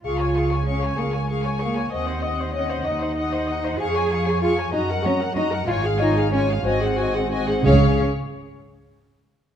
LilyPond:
<<
  \new Staff \with { instrumentName = "Violin section" } { \time 6/8 \key des \major \tempo 4. = 63 des'''16 aes''16 des'''16 aes''16 des'''16 aes''16 des'''16 aes''16 des'''16 aes''16 des'''16 aes''16 | ees''16 ges''16 ees''16 ges''16 ees''16 ges''16 ees''16 ges''16 ees''16 ges''16 ees''16 ges''16 | des'''16 aes''16 des'''16 aes''16 des'''16 aes''16 bes''16 ges''16 bes''16 ges''16 bes''16 ges''16 | aes''16 f''16 aes''16 f''16 aes''16 f''16 aes''16 ges''16 aes''16 ges''16 aes''16 ges''16 |
f''8 r2 r8 | }
  \new Staff \with { instrumentName = "Violin section" } { \time 6/8 \key des \major f''16 aes''16 f''16 aes''16 f''16 aes''16 f''16 aes''16 f''16 aes''16 f''16 aes''16 | ges''16 ees''16 ges''16 ees''16 ges''16 ees''16 ges''16 ees''16 ges''16 ees''16 ges''16 ees''16 | f''16 aes''16 f''16 aes''16 f''16 aes''16 ees''16 ges''16 ees''16 ges''16 ees''16 ges''16 | des''16 f''16 des''16 f''16 des''16 f''16 ees''16 c''16 ees''16 c''16 ees''16 c''16 |
des''8 r2 r8 | }
  \new Staff \with { instrumentName = "Marimba" } { \time 6/8 \key des \major f''4 des''8 bes'8 aes'8 bes'8 | c''4 des''8 ees''4. | aes''4 f''8 ees''8 des''8 ees''8 | f''8 ees''8 des''8 c''4. |
des''8 r2 r8 | }
  \new Staff \with { instrumentName = "Viola section" } { \time 6/8 \key des \major aes'16 des''16 aes'16 des''16 aes'16 des''16 aes'16 des''16 aes'16 des''16 aes'16 des''16 | ees''16 c''16 ees''16 c''16 ees''16 c''16 ees''16 c''16 ees''16 c''16 ees''16 c''16 | aes'16 des''16 aes'16 des''16 aes'16 des''16 ges'16 bes'16 ges'16 bes'16 ges'16 bes'16 | f'16 aes'16 f'16 aes'16 f'16 aes'16 ges'16 aes'16 ges'16 aes'16 ges'16 aes'16 |
aes'8 r2 r8 | }
  \new Staff \with { instrumentName = "Cello section" } { \time 6/8 \key des \major f'4 des'8 bes8 aes8 bes8 | c'4 des'8 ees'4. | aes'4 f'8 ees'8 des'8 ees'8 | f'8 ees'8 des'8 c'4. |
des'8 r2 r8 | }
  \new Staff \with { instrumentName = "Double bass section" } { \clef bass \time 6/8 \key des \major des,4. des,4. | ees,4. ees,4. | f,4. ges,4. | aes,,4. aes,,4. |
des,8 r2 r8 | }
>>